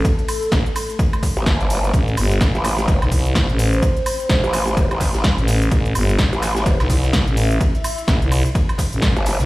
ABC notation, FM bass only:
X:1
M:4/4
L:1/16
Q:"Swing 16ths" 1/4=127
K:Am
V:1 name="FM bass" clef=bass
z4 A,,, z8 z3 | A,,,2 G,,,2 A,,, z4 B,,, C,,2 C,, A,,,3 | z4 A,,, z8 A,,,3 | A,,,2 G,,,2 A,,, z4 B,,, C,,2 C,, A,,,3 |
z4 A,,, C,,2 z4 A,,,2 z2 C,, |]